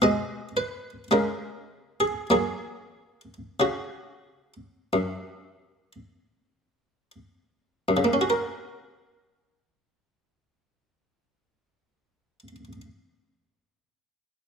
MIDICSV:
0, 0, Header, 1, 2, 480
1, 0, Start_track
1, 0, Key_signature, 6, "major"
1, 0, Tempo, 1100917
1, 484, Tempo, 1192843
1, 964, Time_signature, 4, 2, 24, 8
1, 964, Tempo, 1312910
1, 1924, Tempo, 1415094
1, 2404, Tempo, 1496259
1, 4324, Tempo, 1456311
1, 5032, End_track
2, 0, Start_track
2, 0, Title_t, "Harpsichord"
2, 0, Program_c, 0, 6
2, 9, Note_on_c, 0, 47, 59
2, 9, Note_on_c, 0, 56, 41
2, 14, Note_on_c, 0, 75, 64
2, 210, Note_off_c, 0, 75, 0
2, 248, Note_on_c, 0, 71, 63
2, 391, Note_off_c, 0, 47, 0
2, 452, Note_off_c, 0, 71, 0
2, 469, Note_off_c, 0, 56, 0
2, 485, Note_on_c, 0, 56, 39
2, 487, Note_on_c, 0, 49, 47
2, 490, Note_on_c, 0, 70, 68
2, 842, Note_off_c, 0, 70, 0
2, 844, Note_on_c, 0, 68, 63
2, 870, Note_off_c, 0, 49, 0
2, 948, Note_off_c, 0, 56, 0
2, 964, Note_off_c, 0, 68, 0
2, 964, Note_on_c, 0, 54, 45
2, 964, Note_on_c, 0, 58, 35
2, 969, Note_on_c, 0, 68, 70
2, 1294, Note_off_c, 0, 54, 0
2, 1341, Note_off_c, 0, 58, 0
2, 1437, Note_off_c, 0, 68, 0
2, 1437, Note_on_c, 0, 49, 43
2, 1442, Note_on_c, 0, 66, 50
2, 1778, Note_off_c, 0, 49, 0
2, 1925, Note_on_c, 0, 42, 42
2, 2260, Note_off_c, 0, 42, 0
2, 2649, Note_off_c, 0, 66, 0
2, 2898, Note_on_c, 0, 42, 52
2, 2925, Note_on_c, 0, 49, 41
2, 2950, Note_on_c, 0, 58, 42
2, 2978, Note_on_c, 0, 61, 43
2, 3004, Note_on_c, 0, 66, 40
2, 3031, Note_on_c, 0, 70, 46
2, 4345, Note_off_c, 0, 42, 0
2, 4373, Note_off_c, 0, 49, 0
2, 4398, Note_off_c, 0, 58, 0
2, 4427, Note_off_c, 0, 61, 0
2, 4453, Note_off_c, 0, 66, 0
2, 4482, Note_off_c, 0, 70, 0
2, 5032, End_track
0, 0, End_of_file